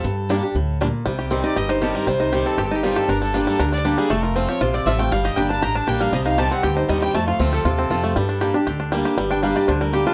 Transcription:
<<
  \new Staff \with { instrumentName = "Resonator guitar played with a steel bar" } { \time 4/4 \key g \minor \tempo 4 = 236 a'4 r2. | r1 | r1 | r1 |
r2 c''8 d''8 e''8 g''8 | f''8 ees''8 g''8 a''8 bes''8 a''8 g''8 f''8 | ees''8 f''8 a''8 fis''8 g''8 r8 ees''8 g''8 | a''8 f''8 c''8 a'8 a'2~ |
a'4 r2. | r8 g''8 f''8 d''8 c''8 bes'8 g'8 f'8 | }
  \new Staff \with { instrumentName = "Fiddle" } { \time 4/4 \key g \minor a'4 r2. | r4. d''8 ees''8 c''8 a'8 bes'8 | c''4. a'8 \tuplet 3/2 { g'8 a'8 g'8 } f'8 a'8 | bes'8 a'8 f'8 a'8 bes'8 d''8 r8 aes'8 |
a'8 bes'8 c''8 cis''8 c''8 d''8 e''8 g''8 | f''8 ees''8 g''8 a''8 bes''8 a''8 g''8 f''8 | ees''8 f''8 a''8 fis''8 g''8 c''8 ees''8 g''8 | a''8 f''8 c''8 a'8 a'2~ |
a'4 r2. | r1 | }
  \new Staff \with { instrumentName = "Five-string banjo" } { \time 4/4 \key g \minor r4 <g d'>8 r4. <g d'>8 r8 | g8 g'8 c'8 ees'8 g'8 ees'8 g'8 g8 | g8 ees'8 g'8 c'8 g'8 ees'8 g8 g'8 | d'8 g8 d'8 g8 d'8 d'8 d'8 g8 |
a8 f'8 c'8 g'8 f'8 c'8 f'8 a8 | g8 g'8 d'8 d'8 g'8 d'8 g'8 g8 | g8 ees'8 g'8 c'8 g'8 ees'8 g8 g'8 | a8 f'8 c'8 g'8 f'8 c'8 f'8 a8 |
g8 d'8 g'8 d'8 g'8 d'8 g8 g'8 | g8 d'8 g8 g'8 d'8 g8 g'8 d'8 | }
  \new Staff \with { instrumentName = "Steel-string acoustic guitar" } { \time 4/4 \key g \minor << { r4 <g bes d' g'>8 <d' g'>8 r2 | r4 <ees g c' g'>8 <c' g'>8 r4 <ees g c' g'>4 | r4 <ees g c' g'>4 r4 <ees g c' g'>4 | r4 <g bes d' g'>4 r4 <g bes d' g'>4 |
r4 <f a c' f'>8 <c' f'>8 r4 <f a c' f'>8 <c' f'>8 | r4 <g bes d' g'>4 r4 <g bes d' g'>4 | r4 <ees g c' g'>4 r4 <ees g c' g'>4 | r4 <f a c' f'>4 r4 <f a c' f'>4 |
r4 <g bes d' g'>8 <d' g'>8 r4 <g bes d' g'>4 | r4 <g bes d' g'>4 r4 <g bes d' g'>4 | } \\ { g,2 a,4 bes,4 | c2 g,2 | c2 g,2 | g,2 d2 |
f,2 c2 | g,2 d2 | c2 g,2 | f,2 c2 |
g,2 d2 | g,2 d2 | } >> }
  \new Staff \with { instrumentName = "Upright bass" } { \clef bass \time 4/4 \key g \minor g,2 d,2 | c,2 g,,2 | c,2 g,,2 | g,,2 d,2 |
f,,2 bes,,4 a,,4 | g,,4 g,,4 a,,4 bes,,4 | c,2 d,4 ees,4 | f,4 d,4 ees,4 f,4 |
g,2 d,2 | g,,2 d,2 | }
>>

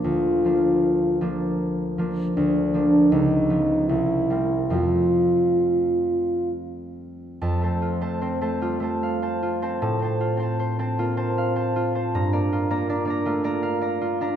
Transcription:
<<
  \new Staff \with { instrumentName = "Harp" } { \time 3/4 \key bes \major \tempo 4 = 77 r2. | \key f \major r2. | r2. | a''16 <c'' a''>16 f'16 <c'' a''>16 c''16 <c'' a''>16 f'16 <c'' a''>16 f''16 <c'' a''>16 f'16 <c'' a''>16 |
a''16 <c'' a''>16 f'16 <c'' a''>16 c''16 <c'' a''>16 f'16 <c'' a''>16 f''16 <c'' a''>16 f'16 <c'' a''>16 | bes''16 <d'' bes''>16 f'16 <d'' bes''>16 d''16 <d'' bes''>16 f'16 <d'' bes''>16 f''16 <d'' bes''>16 f'16 <d'' bes''>16 | }
  \new Staff \with { instrumentName = "Harp" } { \time 3/4 \key bes \major <d, f bes d'>8 <f bes d'>4 <f bes d'>4 <f bes d'>8 | \key f \major d,8 <f bes d'>8 des,8 <f ces'>8 c,8 <g bes c'>8 | <f, f a c'>2. | f,16 a8 a16 c'16 a16 g16 a4 c'16 |
a,16 c'8 c'8 c'16 bes16 c'4~ c'16 | g,16 bes8 bes16 d'16 bes16 a16 bes4 d'16 | }
  \new Staff \with { instrumentName = "French horn" } { \time 3/4 \key bes \major f'4. r4. | \key f \major d'4 ees'4 e'4 | f'2 r4 | r2. |
r2. | r2. | }
>>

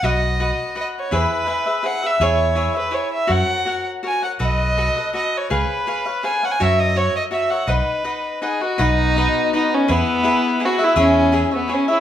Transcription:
<<
  \new Staff \with { instrumentName = "Violin" } { \time 3/4 \key b \major \tempo 4 = 165 dis''2 dis''8 cis''8 | b'2 fis''8 e''8 | cis''4. b'8 cis''8 e''8 | fis''4. r8 gis''8 fis''8 |
dis''2 dis''8 cis''8 | b'2 gis''8 fis''16 gis''16 | e''8 dis''8 cis''8 dis''8 e''8 fis''8 | b'2 gis'8 fis'8 |
dis'2 dis'8 cis'8 | b2 fis'8 e'8 | cis'4. b8 cis'8 e'8 | }
  \new Staff \with { instrumentName = "Cavaquinho" } { \time 3/4 \key b \major <fis' b' dis'' fis''>4 <fis' b' dis'' fis''>4 <fis' b' dis'' fis''>4 | <e' gis' b' e''>4 <e' gis' b' e''>8 <gis' b' e''>8 <e' gis' b' e''>8 <gis' b' e''>8 | <e' gis' cis'' e''>4 <e' gis' cis'' e''>8 <gis' cis'' e''>8 <e' gis' cis'' e''>4 | <fis' ais' cis'' fis''>4 <fis' ais' cis'' fis''>4 <fis' ais' cis'' fis''>8 <ais' cis'' fis''>8 |
<fis' a' b' dis''>4 <fis' a' b' dis''>8 <a' b' dis''>8 <fis' a' b' dis''>4 | <gis' b' cis'' eis''>4 <gis' b' cis'' eis''>8 <b' cis'' eis''>8 <gis' b' cis'' eis''>8 <b' cis'' eis''>8 | <fis' ais' cis'' e''>4 <fis' ais' cis'' e''>4 <fis' ais' cis'' e''>8 <ais' cis'' e''>8 | <dis' b' dis'' fis''>4 <dis' b' dis'' fis''>4 <dis' b' dis'' fis''>8 <b' dis'' fis''>8 |
<dis' b' dis'' fis''>4 <dis' b' dis'' fis''>4 <dis' b' dis'' fis''>4 | <e' gis' b' e''>4 <e' gis' b' e''>4 <e' gis' b' e''>8 <gis' b' e''>8 | <e' gis' cis'' e''>4 <e' gis' cis'' e''>8 <gis' cis'' e''>8 <e' gis' cis'' e''>8 <gis' cis'' e''>8 | }
  \new Staff \with { instrumentName = "Violin section" } { \time 3/4 \key b \major << { r2. | r2. | r2. | r2. |
r2. | r2. | r2. | r2. |
<fis' dis''>2. | <e' gis'>2.~ | <e' gis'>2. | } \\ { r2. | r2. | r2. | r2. |
r2. | r2. | r2. | r2. |
b2.~ | b2. | cis'2. | } >> }
  \new Staff \with { instrumentName = "Fretless electric bass" } { \clef bass \time 3/4 \key b \major b,,2 r4 | e,8 r2 r8 | e,2 r4 | fis,8 r2 r8 |
b,,2 r4 | cis,8 r2 r8 | fis,2 r4 | b,,8 r2 r8 |
b,,2 r4 | e,8 r2 r8 | e,2 r4 | }
>>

